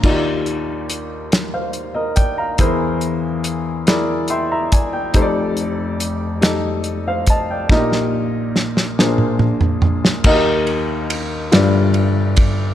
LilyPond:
<<
  \new Staff \with { instrumentName = "Upright piano" } { \time 6/8 \key ees \major \tempo 4. = 47 << { r4. r16 <c'' f''>8 <bes' ees''>16 <d'' g''>16 <f'' bes''>16~ | <f'' bes''>16 r4. r16 <e'' g'' c'''>16 <e'' bes''>16 <d'' aes''>16 <d'' g''>16~ | <d'' g''>16 r2 <c'' f''>16 <ees'' a''>16 <d'' g''>16~ | <d'' g''>16 r2 r8. |
r2. | } \\ { <ees' f' ges' g' d''>4 r2 | <e' aes' bes' c''>4 r8 <e' aes' bes' d''>4 r8 | <ees' g' a' c'' d''>4 r8 <ees' g' a' ees''>4 r8 | <ees' f' g' bes' ees''>4 r8 <d' aes' bes' c''>4 r8 |
<ees' ges' g' bes' ees''>4 r8 <f' g' b' d''>4 r8 | } >> }
  \new Staff \with { instrumentName = "Upright piano" } { \clef bass \time 6/8 \key ees \major <ees, ees>2. | <e, e>2. | <f,, f,>2. | <bes,, bes,>4. <bes,, bes,>4. |
<ees, ees>4. <g,, g,>4. | }
  \new DrumStaff \with { instrumentName = "Drums" } \drummode { \time 6/8 <cymc bd>8 hh8 hh8 <hh sn>8 hh8 <hh bd>8 | <hh bd>8 hh8 hh8 <hh sn>8 hh8 <hh bd>8 | <hh bd>8 hh8 hh8 <hh sn>8 hh8 <hh bd>8 | <bd sn>16 sn8. sn16 sn16 sn16 toml16 toml16 tomfh16 tomfh16 sn16 |
<cymc bd>8 cymr8 cymr8 <cymr sn>8 cymr8 <bd cymr>8 | }
>>